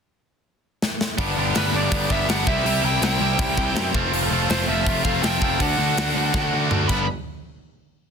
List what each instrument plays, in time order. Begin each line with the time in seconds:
0.82 snare
1.01 snare
1.17 picked electric bass G1, distorted electric guitar G2 D3 G3 B3 D4 G4, kick, open hi-hat
1.37 picked electric bass G1, distorted electric guitar G2 D3 G3 B3 D4 G4
1.54 picked electric bass G1, distorted electric guitar G2 D3 G3 B3 D4 G4, lead electric guitar B4, snare, open hi-hat
1.73 picked electric bass G1, distorted electric guitar G2 D3 G3 B3 D4 G4, lead electric guitar D5
1.91 picked electric bass G1, distorted electric guitar G2 D3 G3 B3 D4 G4, kick, open hi-hat
2.08 picked electric bass G1, distorted electric guitar G2 D3 G3 B3 D4 G4, lead electric guitar E5, kick
2.27 picked electric bass G1, distorted electric guitar G2 D3 G3 B3 D4 G4, lead electric guitar F#5, snare, open hi-hat
2.46 picked electric bass C2, distorted electric guitar C3 G3 C4 E4 G4, lead electric guitar E5, kick
2.64 picked electric bass C2, distorted electric guitar C3 G3 C4 E4 G4, open hi-hat
2.83 picked electric bass C2, distorted electric guitar C3 G3 C4 E4 G4, lead electric guitar G5
3.00 picked electric bass C2, distorted electric guitar C3 G3 C4 E4 G4, lead electric guitar G5, snare, open hi-hat
3.20 picked electric bass C2, distorted electric guitar C3 G3 C4 E4 G4
3.38 picked electric bass C2, distorted electric guitar C3 G3 C4 E4 G4, kick, open hi-hat
3.57 picked electric bass C2, distorted electric guitar C3 G3 C4 E4 G4, kick
3.74 picked electric bass F#2, distorted electric guitar C3 G3 C4 E4 G4, snare, open hi-hat
3.94 picked electric bass F1, distorted electric guitar F3 A3 C4 F4, kick
4.12 picked electric bass F1, distorted electric guitar F3 A3 C4 F4, open hi-hat
4.31 picked electric bass F1, distorted electric guitar F3 A3 C4 F4
4.49 picked electric bass F1, distorted electric guitar F3 A3 C4 F4, lead electric guitar C5, snare, open hi-hat
4.67 picked electric bass F1, distorted electric guitar F3 A3 C4 F4, lead electric guitar E5
4.86 picked electric bass F1, distorted electric guitar F3 A3 C4 F4, kick, open hi-hat
5.04 picked electric bass F1, distorted electric guitar F3 A3 C4 F4, lead electric guitar F5, kick
5.23 picked electric bass F1, distorted electric guitar F3 A3 C4 F4, lead electric guitar G5, snare, open hi-hat
5.42 picked electric bass F1, distorted electric guitar F3 A3 C4 F4, kick
5.59 picked electric bass D2, distorted electric guitar D3 A3 D4 F#4, lead electric guitar F#5, kick, open hi-hat
5.78 picked electric bass D2, distorted electric guitar D3 A3 D4 F#4
5.97 picked electric bass D2, distorted electric guitar D3 A3 D4 F#4, snare, open hi-hat
6.16 picked electric bass D2, distorted electric guitar D3 A3 D4 F#4
6.33 picked electric bass D2, distorted electric guitar D3 A3 D4 F#4, kick, snare
6.52 picked electric bass D2, distorted electric guitar D3 A3 D4 F#4
6.71 picked electric bass D2, distorted electric guitar D3 A3 D4 F#4, mid tom
6.88 picked electric bass G1, distorted electric guitar G2 D3 G3 B3 D4, lead electric guitar B5, kick, crash